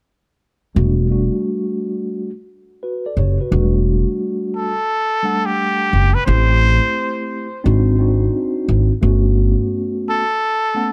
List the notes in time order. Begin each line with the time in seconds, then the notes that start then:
0.75 E1 G3 A3 D4 F#4
1.09 G3 A3 D4 F#4
2.83 F#4 B4
3.06 A4 D5
3.17 F#1 G4 C#5
3.41 F#4 B4
3.51 E1 F#3 A3 D4 F#4
3.58 G3
4.56 A4
5.23 G3 A3 D4 F#5
5.46 G4
5.93 F#1
6.14 B4
6.26 A1 A3 C4 E4 G4 C5
7.64 G#1 C4 D4 D#4 F#4
7.99 C4 D4 D#4 F#4
8.68 G#1
9.01 G1 A3 B3 C#4 F#4
10.09 A4
10.74 A3 B3 C#4 F#5